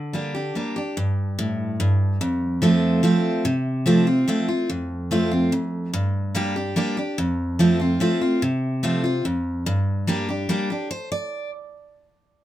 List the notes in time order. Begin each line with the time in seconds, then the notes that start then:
Already playing: D3
0.13 G3 A#3 D4 G4
0.35 D4 G4
0.55 G3 A#3 D4 G4
0.76 D4 G4
0.97 G2
1.39 A2
1.80 G2
2.21 F2
2.62 F3 A3 C4 F4
3.03 F3 A3 C4 F4
3.45 C3
3.86 F3 A3 C4 F4
4.07 C4 F4
4.28 F3 A3 C4 F4
4.48 C4 F4
4.70 F2
5.11 F3 A3 C4 F4
5.31 C4 F4
5.52 F2
5.93 G2
6.35 G3 A#3 D4 G4
6.56 D4 G4
6.76 G3 A#3 D4 G4
6.97 D4 G4
7.18 F2
7.59 F3 A3 C4 F4
7.79 C4 F4
8.00 F3 A3 C4 F4
8.21 C4 F4
8.42 C3
8.83 F3 A3 C4 F4
9.04 C4 F4
9.25 F2
9.66 G2
10.07 G3 A#3 D4 G4
10.29 D4 G4
10.49 G3 A#3 D4 G4
10.70 D4 G4
10.91 C5
11.12 D5